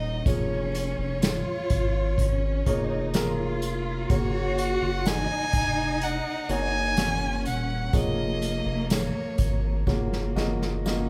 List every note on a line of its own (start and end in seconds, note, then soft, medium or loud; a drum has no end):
0.00 0.23 D#1 medium
0.00 0.26 A#3 medium
0.00 0.28 C#4 medium
0.00 0.22 D#4 loud
0.00 0.28 F#4 medium
0.00 0.21 C#5 medium
0.00 0.28 D#5 medium
0.00 0.29 D#5 medium
0.26 0.94 F1 loud
0.26 1.67 F3 medium
0.26 2.09 A#3 medium
0.26 1.22 C#4 loud
0.26 2.09 F4 medium
0.26 2.09 G#4 medium
0.26 2.09 C#5 medium
0.26 0.75 C#5 medium
0.26 kick loud
0.26 closed hi-hat medium
0.26 tambourine soft
0.75 3.59 C#5 medium
0.75 closed hi-hat medium
0.75 tambourine soft
0.98 1.43 F1 medium
1.22 2.18 F4 loud
1.22 snare loud
1.22 closed hi-hat medium
1.22 tambourine medium
1.70 2.62 G#1 medium
1.70 kick medium
1.70 closed hi-hat medium
1.70 tambourine soft
2.18 2.66 C#4 medium
2.18 kick medium
2.18 closed hi-hat medium
2.66 4.06 F1 medium
2.66 3.12 A#3 medium
2.66 3.14 D#4 loud
2.66 3.12 F4 medium
2.66 3.12 G#4 medium
2.66 3.12 C#5 medium
2.66 kick medium
2.66 closed hi-hat medium
2.66 tambourine soft
3.14 4.05 A#3 medium
3.14 4.10 F4 loud
3.14 4.05 F4 medium
3.14 4.05 G#4 medium
3.14 4.06 A#4 medium
3.14 snare loud
3.14 closed hi-hat medium
3.14 tambourine medium
3.62 closed hi-hat medium
3.62 tambourine soft
4.10 4.78 F#1 medium
4.10 5.49 C#3 medium
4.10 5.91 A#3 medium
4.10 5.92 C#4 medium
4.10 5.05 F#4 loud
4.10 5.92 F#4 medium
4.10 5.92 C#5 medium
4.10 4.61 C#5 medium
4.10 kick loud
4.10 closed hi-hat medium
4.10 tambourine medium
4.58 5.09 F#5 loud
4.58 closed hi-hat medium
4.58 tambourine medium
4.82 5.26 F#1 medium
5.05 6.97 D#4 loud
5.05 6.05 G#5 loud
5.05 snare loud
5.05 closed hi-hat medium
5.05 tambourine medium
5.53 6.21 F1 medium
5.53 kick medium
5.53 closed hi-hat medium
5.53 tambourine soft
6.01 6.52 F#5 loud
6.01 closed hi-hat medium
6.49 7.47 F#1 medium
6.49 6.95 A#3 medium
6.49 6.95 C#4 medium
6.49 6.95 F#4 medium
6.49 6.95 C#5 medium
6.49 7.46 G#5 loud
6.49 closed hi-hat medium
6.96 7.88 A#3 medium
6.96 7.89 C#4 medium
6.96 7.94 C#4 loud
6.96 7.89 F#4 medium
6.96 7.89 C#5 medium
6.96 snare loud
6.96 closed hi-hat medium
6.96 tambourine medium
7.45 7.90 D#1 medium
7.45 7.97 F#5 medium
7.45 closed hi-hat medium
7.45 tambourine soft
7.93 8.62 F1 medium
7.93 9.34 F3 medium
7.93 9.77 A#3 medium
7.93 9.86 A#3 loud
7.93 9.77 F4 medium
7.93 9.77 G#4 medium
7.93 9.77 C#5 medium
7.93 8.91 D#5 medium
7.93 kick loud
7.93 closed hi-hat medium
7.93 tambourine soft
8.42 closed hi-hat medium
8.42 tambourine soft
8.66 9.11 F1 loud
8.90 9.84 C#5 medium
8.90 snare loud
8.90 closed hi-hat medium
8.90 tambourine medium
9.38 9.84 G#1 medium
9.38 kick medium
9.38 closed hi-hat medium
9.38 tambourine soft
9.87 10.33 F#1 loud
9.87 11.09 C#3 medium
9.87 10.34 A#3 medium
9.87 10.82 A#3 medium
9.87 10.34 F4 medium
9.87 10.34 F#4 medium
9.87 10.34 C#5 medium
9.87 kick medium
9.87 snare medium
9.87 tambourine soft
10.13 snare soft
10.36 11.09 F#1 medium
10.36 10.83 A#3 medium
10.36 10.83 F4 medium
10.36 10.83 F#4 medium
10.36 10.83 D#5 medium
10.36 snare medium
10.36 tambourine soft
10.62 snare medium
10.85 11.09 A#3 medium
10.85 11.09 C#4 medium
10.85 11.09 F4 medium
10.85 11.09 F#4 medium
10.85 11.09 D#5 medium
10.85 snare medium
10.85 tambourine medium